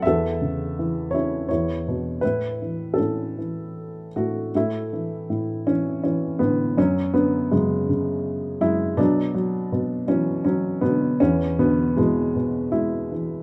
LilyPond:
\new Staff \with { instrumentName = "Upright piano" } { \clef bass \time 3/4 \key a \major \tempo 4 = 81 << { <a' e''>4. <e' cis''>8 <e' cis''>4 | <e' b'>4 <cis' a'>4. <a fis'>8 | <a e'>4. cis'8 <e cis'>8 <d b>8 | <fis cis'>8 <d b>8 <cis gis>4. <gis e'>8 |
<fis d'>4. <e cis'>8 <fis cis'>8 <d b>8 | <e cis'>8 <d b>8 <b, gis>4 <gis e'>4 | } \\ { e,8 cis8 e8 cis'8 e,8 b,8 | a,8 e8 a,8 e4 a,8 | a,8 e8 a,8 e4 a,8 | fis,8 cis'8 fis,8 cis4 fis,8 |
b,8 fis8 b,8 fis4 b,8 | e,8 b,8 e8 b,4 e8 | } >> }